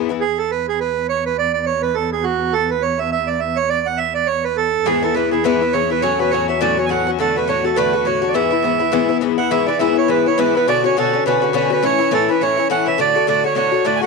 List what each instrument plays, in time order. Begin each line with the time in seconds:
Already playing: cello E2
0.09 bouzouki E3 B3 E4
0.21 cello E2, accordion G#4
0.38 accordion A4
0.51 accordion B4
0.69 accordion G#4
0.80 accordion B4
1.09 accordion C#5
1.26 accordion B4
1.39 accordion D5
1.54 accordion D5
1.66 accordion C#5
1.82 accordion B4
1.94 accordion A4
2.12 accordion G#4
2.24 accordion F#4
2.53 accordion A4
2.71 accordion B4
2.82 accordion C#5
2.99 accordion E5
3.12 accordion E5
3.27 accordion D5
3.40 accordion E5
3.56 accordion C#5
3.70 accordion D5
3.86 accordion F#5
3.98 accordion E5
4.14 accordion D5
4.27 accordion C#5
4.44 accordion B4
4.57 accordion A4
4.85 cello E2, bouzouki G#2 E3 B3 E4, accordion G#4
5.02 bouzouki E3 B3 E4, accordion A4
5.14 bouzouki G#2 E3 B3 E4, accordion B4
5.31 bouzouki E3 B3 E4, accordion G#4
5.44 bouzouki G#2 E3 B3 E4, accordion B4
5.61 bouzouki E3 B3 E4
5.73 bouzouki G#2 E3 B3 E4, accordion C#5
5.90 bouzouki E3 B3 E4, accordion B4
6.02 bouzouki A2 F#3 C#4 F#4, accordion C#5
6.19 bouzouki F#3 C#4 F#4, accordion B4
6.31 bouzouki A2 F#3 C#4 F#4, accordion C#5
6.48 bouzouki F#3 C#4 F#4, accordion E5
6.61 bouzouki A2 F#3 C#4 F#4, accordion D5
6.77 bouzouki F#3 C#4 F#4, accordion C#5
6.86 bouzouki A2, accordion G#5
6.90 bouzouki F#3 C#4 F#4, accordion F#5
7.07 bouzouki F#3 C#4 F#4
7.19 bouzouki A2 D3 A3 F#4, accordion A4
7.36 bouzouki D3 A3 F#4, accordion B4
7.47 bouzouki A2 D3 A3 F#4, accordion C#5
7.64 bouzouki D3 A3 F#4, accordion A4
7.76 bouzouki A2 D3 A3 F#4, accordion B4
7.93 bouzouki D3 A3 F#4
8.05 bouzouki A2 D3 A3 F#4, accordion C#5
8.22 bouzouki D3 A3 F#4
8.28 accordion D5
8.34 bouzouki G#2 E3 B3 E4, accordion E5
8.51 bouzouki E3 B3 E4
8.62 bouzouki G#2 E3 B3 E4
8.79 bouzouki E3 B3 E4
8.92 bouzouki G#2 E3 B3 E4
9.09 bouzouki E3 B3 E4
9.21 bouzouki G#2 E3 B3 E4
9.38 bouzouki E3 B3 E4, accordion F#5
9.51 bouzouki G#2 E3 B3 E4, accordion E5
9.67 bouzouki E3 B3 E4, accordion D5
9.79 bouzouki G#2 E3 B3 E4, accordion E5
9.96 bouzouki E3 B3 E4, accordion C#5
10.08 bouzouki G#2 E3 B3 E4, accordion B4
10.26 bouzouki E3 B3 E4, accordion C#5
10.38 bouzouki G#2 E3 B3 E4, accordion B4
10.55 bouzouki E3 B3 E4, accordion B4
10.68 bouzouki B2 D3 C#4 F#4, accordion D5
10.84 bouzouki D3 C#4 F#4, accordion C#5
10.97 bouzouki B2 D3 C#4 F#4, accordion A4
11.13 bouzouki D3 C#4 F#4
11.26 bouzouki B2 D3 C#4 F#4, accordion B4
11.42 bouzouki D3 C#4 F#4
11.53 bouzouki B2 D3 C#4 F#4, accordion B4
11.70 bouzouki D3 C#4 F#4, accordion B4
11.83 bouzouki A2 E3 C#4 E4, accordion C#5
11.99 bouzouki E3 C#4 E4
12.11 bouzouki A2 E3 C#4 E4, accordion A4
12.29 bouzouki E3 C#4 E4, accordion B4
12.41 bouzouki A2 E3 C#4 E4, accordion C#5
12.57 bouzouki E3 C#4 E4
12.70 bouzouki A2 E3 C#4 E4, accordion F#5
12.86 bouzouki E3 C#4 E4, accordion E5
12.98 bouzouki A2 D3 A3 F#4, accordion D5
13.15 bouzouki D3 A3 F#4
13.27 bouzouki A2 D3 A3 F#4, accordion D5
13.44 bouzouki D3 A3 F#4, accordion C#5
13.55 bouzouki A2 D3 A3 F#4, accordion C#5
13.72 bouzouki D3 A3 F#4
13.85 bouzouki A2 D3 A3 F#4, accordion D5
13.96 accordion G#5
14.01 bouzouki D3 A3 F#4, accordion F#5